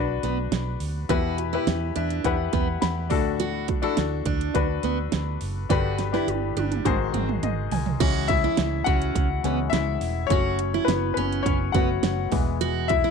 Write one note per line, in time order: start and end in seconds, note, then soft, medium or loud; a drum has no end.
0.00 0.18 B1 medium
0.00 1.11 D4 medium
0.00 1.11 F#4 medium
0.00 1.10 B4 medium
0.23 0.47 B1 loud
0.23 0.37 B3 medium
0.23 snare soft
0.23 closed hi-hat medium
0.51 0.75 B1 loud
0.51 snare loud
0.51 closed hi-hat medium
0.80 1.04 D2 medium
0.80 open hi-hat medium
1.09 1.56 E2 medium
1.09 1.92 B2 medium
1.09 1.42 E4 medium
1.09 1.37 F#4 medium
1.09 1.43 G4 medium
1.09 1.43 B4 loud
1.09 kick loud
1.09 closed hi-hat medium
1.38 closed hi-hat medium
1.53 1.66 E4 medium
1.53 2.08 E4 medium
1.53 2.09 G4 medium
1.53 2.09 B4 medium
1.67 1.90 E2 medium
1.67 snare loud
1.67 closed hi-hat medium
1.96 2.19 E2 medium
1.96 2.36 D4 medium
1.96 2.23 E5 medium
1.96 closed hi-hat medium
2.10 closed hi-hat soft
2.24 2.48 E2 loud
2.24 3.11 E4 medium
2.24 3.11 G4 medium
2.24 3.12 B4 medium
2.24 2.52 F#5 medium
2.24 kick medium
2.24 closed hi-hat medium
2.53 2.77 E2 loud
2.53 2.67 B3 medium
2.53 2.80 G5 medium
2.53 kick medium
2.53 snare soft
2.53 closed hi-hat medium
2.81 3.11 E2 loud
2.81 3.35 B5 medium
2.81 snare loud
2.81 closed hi-hat medium
3.10 3.82 D2 medium
3.10 3.93 A2 medium
3.10 3.68 D4 medium
3.10 3.68 F#4 medium
3.10 3.69 A4 medium
3.10 kick loud
3.10 open hi-hat medium
3.40 3.67 F#4 medium
3.40 closed hi-hat medium
3.68 kick medium
3.68 closed hi-hat medium
3.82 4.38 D4 medium
3.82 3.96 E4 medium
3.82 4.38 F#4 medium
3.82 4.39 A4 medium
3.97 4.21 D2 medium
3.97 snare loud
3.97 closed hi-hat medium
4.25 4.49 D2 medium
4.25 4.67 D4 medium
4.25 kick medium
4.25 closed hi-hat medium
4.41 closed hi-hat medium
4.54 4.78 D2 loud
4.54 5.43 D4 medium
4.54 5.44 F#4 medium
4.54 5.44 B4 loud
4.54 kick medium
4.54 closed hi-hat medium
4.83 5.07 D2 medium
4.83 4.97 B3 medium
4.83 snare soft
4.83 closed hi-hat medium
5.12 5.36 D2 medium
5.12 snare loud
5.12 closed hi-hat medium
5.41 5.65 F#1 medium
5.41 open hi-hat medium
5.70 6.17 G1 loud
5.70 6.53 G2 medium
5.70 6.53 D3 medium
5.70 6.03 D4 medium
5.70 5.97 F#4 loud
5.70 6.03 G4 medium
5.70 6.04 B4 loud
5.70 kick loud
5.70 snare medium
5.70 closed hi-hat medium
5.99 snare medium
5.99 closed hi-hat medium
6.12 6.68 D4 medium
6.12 6.27 E4 medium
6.12 6.69 G4 medium
6.12 6.69 B4 medium
6.12 snare medium
6.27 6.51 G1 medium
6.27 closed hi-hat medium
6.27 high tom medium
6.56 6.80 G1 medium
6.56 6.97 D4 medium
6.56 closed hi-hat medium
6.56 high tom medium
6.71 closed hi-hat soft
6.71 mid tom medium
6.85 7.09 G#1 medium
6.85 7.68 G#2 medium
6.85 7.68 D#3 medium
6.85 7.74 F#4 medium
6.85 7.74 G#4 medium
6.85 7.74 C5 loud
6.85 kick medium
6.85 closed hi-hat medium
6.85 mid tom medium
7.13 7.37 G#1 medium
7.13 7.28 C4 medium
7.13 closed hi-hat medium
7.13 mid tom medium
7.29 mid tom medium
7.43 7.66 G#1 loud
7.43 7.70 D#5 medium
7.43 closed hi-hat medium
7.43 mid tom medium
7.71 7.95 C2 medium
7.71 7.99 G#5 medium
7.71 floor tom loud
7.71 open hi-hat medium
7.86 floor tom medium
8.00 8.47 C#2 loud
8.00 9.42 E3 medium
8.00 9.43 G#3 medium
8.00 9.43 C#4 medium
8.00 8.28 F#4 loud
8.00 kick loud
8.00 closed hi-hat loud
8.00 crash loud
8.28 8.83 E4 medium
8.28 8.88 E5 loud
8.28 kick medium
8.28 closed hi-hat medium
8.44 8.57 E4 medium
8.57 8.81 C#2 loud
8.57 snare loud
8.57 closed hi-hat medium
8.84 9.10 C#2 loud
8.84 9.27 C#4 medium
8.84 9.70 F#4 medium
8.84 9.75 F#5 loud
8.84 kick medium
8.84 closed hi-hat medium
9.02 closed hi-hat medium
9.15 9.39 C#2 loud
9.15 kick medium
9.15 closed hi-hat loud
9.43 9.68 C#2 loud
9.43 9.70 E3 soft
9.43 9.70 G#3 soft
9.43 9.58 B3 medium
9.43 9.70 C#4 medium
9.43 snare soft
9.43 closed hi-hat medium
9.70 9.96 C#2 loud
9.70 10.27 E4 medium
9.70 10.31 E5 loud
9.70 snare loud
9.70 closed hi-hat medium
10.01 10.25 E1 medium
10.01 open hi-hat medium
10.27 10.77 F#1 loud
10.27 10.68 F#3 medium
10.27 10.69 A3 medium
10.27 10.88 C#5 loud
10.27 kick loud
10.27 closed hi-hat loud
10.31 10.69 C#4 medium
10.31 10.59 F#4 loud
10.59 closed hi-hat medium
10.74 10.88 E4 medium
10.85 11.11 F#1 loud
10.85 11.15 B3 medium
10.85 11.12 B4 medium
10.85 snare loud
10.85 closed hi-hat medium
11.14 11.40 F#1 loud
11.14 11.58 C#4 medium
11.14 11.45 B4 medium
11.14 closed hi-hat medium
11.18 11.44 B3 medium
11.32 closed hi-hat medium
11.43 11.69 F#1 loud
11.43 11.53 C#4 medium
11.43 11.50 C#5 loud
11.43 kick medium
11.43 closed hi-hat loud
11.72 11.98 F#1 loud
11.72 12.00 F#3 soft
11.72 12.00 A3 soft
11.72 11.88 B3 medium
11.72 12.01 C#4 medium
11.72 12.28 F#4 medium
11.72 12.27 F#5 medium
11.72 kick loud
11.72 snare soft
11.72 closed hi-hat medium
12.03 12.27 F#1 loud
12.03 snare loud
12.03 closed hi-hat medium
12.32 13.03 E1 medium
12.32 12.70 E3 medium
12.32 12.70 G#3 soft
12.32 12.71 B3 medium
12.32 kick loud
12.32 open hi-hat medium
12.61 12.88 F#4 loud
12.61 closed hi-hat loud
12.88 13.11 E4 medium
12.88 13.11 E5 loud
12.88 kick medium
12.88 closed hi-hat medium
13.04 13.11 E4 medium